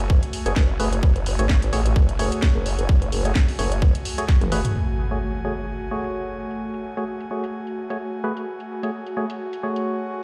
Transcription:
Already playing: F#1 A3 F#4 G#5
0.10 kick
0.23 closed hi-hat
0.33 open hi-hat
0.46 F#1 A3 F#4 G#4 C#5, closed hi-hat
0.56 F#1, kick, snare
0.80 F#1 A3 F#4 G#4 B4, open hi-hat
0.93 closed hi-hat
1.03 F#1, kick
1.16 closed hi-hat
1.26 open hi-hat
1.39 G#1 A3 F#4 G#4 C#5, closed hi-hat
1.49 kick, snare
1.62 closed hi-hat
1.73 A1 A3 F#4 G#4 C#5, open hi-hat
1.86 closed hi-hat
1.96 F#1, kick
2.09 closed hi-hat
2.19 A3 F#4 G#4 C#5, open hi-hat
2.32 closed hi-hat
2.42 kick, snare
2.55 F#1
2.66 open hi-hat
2.79 F#1, closed hi-hat
2.89 F#1, kick
3.02 closed hi-hat
3.12 F#1, open hi-hat
3.25 A3 F#4 G#4 C#5, closed hi-hat
3.35 kick, snare
3.48 open hi-hat
3.59 F#1 A3 F#4 G#4 C#5, open hi-hat
3.72 closed hi-hat
3.82 kick
3.95 closed hi-hat
4.05 open hi-hat
4.18 A3 F#4 G#4 C#5, closed hi-hat
4.29 kick, snare
4.41 F#1, closed hi-hat, high tom
4.52 A3 F#4 G#4 B4, open hi-hat
4.65 closed hi-hat, mid tom
4.75 F#4, crash, impact
4.88 closed hi-hat
5.11 A3 F#4 G#4 C#5, closed hi-hat
5.34 closed hi-hat
5.45 A3 F#4 G#4 C#5
5.58 closed hi-hat
5.81 closed hi-hat
5.91 A3 F#4 G#4 C#5
6.04 closed hi-hat
6.51 closed hi-hat
6.74 closed hi-hat
6.97 A3 F#4 G#4 C#5, closed hi-hat
7.20 closed hi-hat
7.31 A3 F#4 G#4 C#5
7.44 closed hi-hat
7.67 closed hi-hat
7.90 A3 F#4 G#4 C#5, closed hi-hat
8.24 A3 F#4 G#4 B4
8.37 closed hi-hat
8.60 closed hi-hat
8.83 A3 F#4 G#4 C#5, closed hi-hat
9.07 closed hi-hat
9.17 A3 F#4 G#4 C#5
9.30 closed hi-hat
9.53 closed hi-hat
9.63 A3 F#4 G#4 C#5
9.76 closed hi-hat

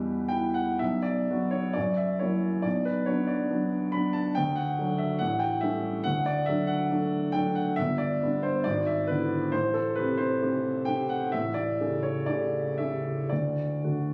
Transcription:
Already playing: E2 B2 G3 G4 B4 E5
0.28 E4 G5
0.54 F#5
0.79 B1 E5
1.02 D5
1.30 F#3 B3 F#4
1.51 C#5
1.73 F#2 D5
1.97 E5
2.19 F#3 A#3 E4 C#5
2.62 B1 D5
2.85 B4
3.06 F#3 B3 D4 C#5
3.27 D5
3.50 F#3 B3 D4
3.92 F#3 B3 D4 B5
4.13 A5
4.35 D2 G5
4.55 F#5
4.79 F#3 A3 D4
4.98 E5
5.19 A1 F#5
5.39 G5
5.61 G3 A3 C#4 E5
6.04 D2 F#5
6.26 D5
6.46 F#3 A3 D4 E5
6.67 F#5
6.91 F#3 A3 D4
7.32 F#3 A3 D4 G5
7.55 F#5
7.76 G1 E5
7.98 D5
8.23 G3 B3 D4
8.43 C5
8.64 G#1 D5
8.86 E5
9.07 D3 B3 E4 B4
9.52 A1 C5
9.73 A4
9.96 C3 A3 G4 B4
10.17 C5
10.42 C3 A3 G4
10.85 C3 A3 G4 G5
11.09 F#5
11.32 A1 E5
11.54 D5
11.80 C#3 A3 G4
12.03 C#5
12.26 C#3 A3 G4 D5
12.78 C#3 A3 G4 E5
13.29 D2 D5
13.84 D3 A3 F#4

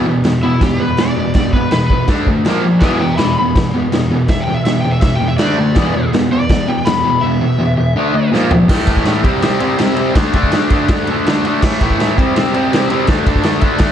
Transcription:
0.06 E2 B2
0.24 E2 B2, snare, crash
0.43 E2 B2 E4
0.61 E2 B2 G4, kick, snare, crash
0.80 E2 B2 B4
0.97 E2 B2 D5, snare, crash
1.17 E2 B2
1.34 E2 B2 D5, kick, snare, crash
1.53 E2 B2 B4, kick
1.71 E2 B2 B4, snare, crash
1.90 E2 B2, kick
2.08 D3 A3 D4, kick, snare, crash
2.27 D3 A3, kick
2.45 A#2 F3 A#3, snare, crash
2.63 A#2 F3
2.80 E2 B2 E3 G#4 E5, kick, snare, crash
2.98 E2 B2 E5 G5
3.17 E2 B2 G#5 B5, snare, crash
3.37 E2 B2 B5
3.56 E2 B2, kick, snare, crash
3.74 E2 B2
3.92 E2 B2, snare, crash
4.11 E2 B2
4.28 E2 B2 E5, kick, snare, crash
4.40 G5
4.48 E2 B2
4.54 E5
4.65 E2 B2 E5, snare, crash
4.81 E2 B2 G5
4.91 E5
5.01 E2 B2 E5, kick, snare, crash
5.15 G5
5.20 E2 B2
5.28 E5
5.38 D3 A3 D4 D5, snare, crash
5.58 D3 A3
5.75 E2 B2 E3, kick, snare, crash
5.94 E2 B2
6.12 E2 B2, snare, crash
6.31 E2 B2 D5
6.49 E2 B2, kick, snare, crash
6.67 E2 B2 G5
6.85 E2 B2 B5, snare, crash
7.04 E2 B2
7.21 E2 B2 E5
7.41 E2 B2
7.59 E2 B2
7.77 E2 B2
7.96 D3 A3 D4
8.14 D3 A3
8.32 A#2 F3 A#3, snare
8.50 A#2 F3, floor tom
8.69 A2 E3 A3, kick, snare, crash
8.87 A2 E3 A3, kick, ride
8.97 kick
9.05 A2 E3 A3, snare, ride
9.23 C3 G3 C4, kick, ride
9.42 C3 G3 C4, snare, ride
9.59 C3 G3 C4, ride
9.77 C3 G3 C4, snare, ride
9.96 C3 G3 C4, ride
10.14 D3 A3 D4, kick, snare, ride
10.33 D3 A3 D4, kick, ride
10.43 kick
10.52 D3 A3 D4, snare, ride
10.70 D3 A3 D4, kick, ride
10.88 D3 A3 D4, kick, snare, ride
11.07 D3 A3 D4, ride
11.25 D3 A3 D4, snare, ride
11.44 D3 A3 D4, ride
11.62 A2 E3 A3, kick, snare, crash
11.81 A2 E3 A3, kick, ride
11.90 kick
11.99 A2 E3 A3, snare, ride
12.17 C3 G3 C4, kick, ride
12.36 C3 G3 C4, snare, ride
12.52 C3 G3 C4, ride
12.72 C3 G3 C4, snare, ride
12.89 C3 G3 C4, ride
13.07 D3 A3 D4, kick, snare, ride
13.25 D3 A3 D4, kick, ride
13.35 kick
13.42 D3 A3 D4, snare, ride
13.60 D3 A3 D4, kick, ride
13.77 D3 A3 D4, kick, snare, ride

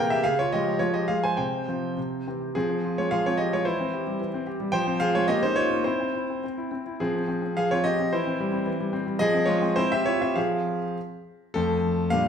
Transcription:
Already playing: C3 E3 A#3 G#4 A#4 F5 G5
0.00 C4
0.10 G4 E5
0.24 C#3 G#4 F5
0.39 F4 C#5
0.52 F3 G#3 F4 G4 D#5
0.79 F3 G#3 F4 C#5
0.94 G4 D#5
1.08 F3 G#3 F4 G#4 F5
1.24 C5 G#5
1.37 C3 C5 G5
1.68 F3 C4 F4
1.97 C3
2.27 E3 C4 G4
2.55 F3 C4 G#4
2.70 C4
2.84 F4
2.98 G#3 F4 C#5
3.11 F3 G#4 F5
3.26 C4 F4 C#5
3.38 F4 G4 D#5
3.53 G#3 F4 C#5
3.65 E3 E4 C5
3.80 C4
3.93 G4
4.07 G3
4.20 E3
4.34 C4
4.47 G4
4.60 G3
4.72 F3 C5 G5
4.87 C4
5.00 F4 G#4 F5
5.15 G#3 F4 C#5
5.28 A#3 G4 D#5
5.43 C#4 D#4 C5
5.56 F4 C#5
5.70 A#3
5.84 C4 E4 C5
6.00 C4
6.15 E4
6.30 C4
6.44 C4
6.58 E4
6.71 C4
6.86 E4
7.00 F3 C4 G#4
7.16 C4
7.28 C4
7.42 C4
7.57 F3 G#4 F5
7.71 C4 F4 C#5
7.84 C4 G4 D#5
7.99 C4
8.13 E3 E4 C5
8.27 C4
8.40 G3
8.53 C4
8.66 E3
8.80 G3
8.93 C4
9.07 G3
9.19 F3 G#4 D#5
9.34 C4
9.46 G#3 F4 C#5
9.62 C4
9.76 C4 E4 C5
9.92 C4 G4 E5
10.06 E4 F4 C#5
10.21 C4 G4 E5
10.36 F3 C4 F4 G#4 F5
11.54 F2 A3 C4 A4
12.10 A#2 G3 A#3 D4 F5

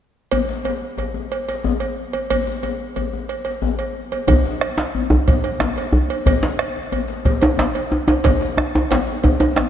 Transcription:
0.32 cowbell, djembe bass
0.49 djembe slap
0.65 cowbell, djembe tone
0.98 cowbell, djembe slap, djembe bass
1.14 djembe slap, djembe tone
1.31 cowbell, djembe slap
1.49 cowbell, djembe slap
1.64 djembe tone, djembe bass
1.80 cowbell, djembe slap
1.99 djembe slap
2.13 cowbell, djembe tone
2.30 cowbell, djembe bass
2.47 djembe slap
2.63 cowbell, djembe tone
2.96 cowbell, djembe slap, djembe bass
3.13 djembe slap, djembe tone
3.29 cowbell, djembe slap
3.45 cowbell, djembe slap
3.62 djembe tone, djembe bass
3.79 cowbell, djembe slap
3.95 djembe slap
4.12 cowbell, djembe tone
4.28 bombo low, cowbell, djembe tone, djembe bass
4.45 djembe slap
4.61 bombo rim, cowbell
4.78 djembe slap
4.95 djembe bass
5.10 djembe slap, djembe bass
5.28 bombo rim, bombo low, cowbell, djembe tone
5.44 cowbell, djembe slap
5.60 bombo rim, djembe slap, djembe bass
5.76 cowbell, djembe slap
5.93 djembe bass
6.10 cowbell
6.26 bombo low, cowbell, djembe tone, djembe bass
6.43 bombo rim, djembe slap
6.59 bombo rim, cowbell
6.92 cowbell, djembe bass
7.08 djembe slap
7.25 bombo rim, bombo low, cowbell, djembe tone
7.42 cowbell, djembe slap, djembe tone
7.57 bombo rim, djembe slap, djembe bass
7.74 cowbell, djembe slap
7.92 djembe tone
8.08 cowbell, djembe tone
8.24 bombo low, cowbell, djembe slap, djembe tone, djembe bass
8.41 bombo rim, djembe slap
8.57 bombo rim, djembe tone
8.75 djembe tone
8.91 cowbell, djembe slap, djembe bass
9.07 djembe slap
9.23 bombo rim, bombo low, cowbell, djembe tone
9.40 cowbell, djembe slap, djembe tone
9.56 bombo rim, djembe slap, djembe bass

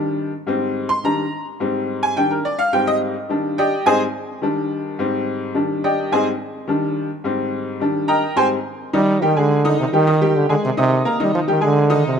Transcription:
Already playing: D#3 G3 D4
0.47 G#2 G3 C4
0.89 C6
1.04 D#3 G3 D4 A#5
1.60 G#2 G3 C4
2.03 G#5
2.17 D#3 G3 D4 G5
2.31 A#4
2.45 D5
2.59 F5
2.73 G#2 G3 C4 G5
2.87 D#5
3.29 D#3 G3 D4
3.58 G4 D5 D#5 G5
3.86 G#2 G3 C4 G#4 C5 D#5 G#5
4.42 D#3 G3 D4
4.99 G#2 G3 C4
5.54 D#3 G3 D4
5.84 G4 D5 D#5 G5
6.12 G#2 G3 C4 G#4 C5 D#5 G#5
6.67 D#3 G3 D4
7.24 G#2 G3 C4
7.80 D#3 G3 D4
8.08 A#4 D#5 G5 A#5
8.36 G#2 G3 C4 C5 G5 G#5 C6
8.93 D#3 G3 D#4 D#5
9.22 D#3 G3 G4 G5
9.36 D3 G#3 G#4 G#5
9.64 D#3 D#4 D#5
9.80 C3
9.93 D#3 G3 G4 G5
10.07 D#3 D#4 D#5
10.21 G3 G4 G5
10.36 D3
10.49 D3 G#3 G#4 G#5
10.65 C3
10.77 C3 D#4 D#5 D#6
11.05 A#3 A#4 A#5
11.20 D#3 G3 D#4 D#5
11.35 F3
11.48 D#3 G3 G4 G5
11.61 D3 G#3 G#4 G#5
11.90 D#3 D#4 D#5
12.07 C3

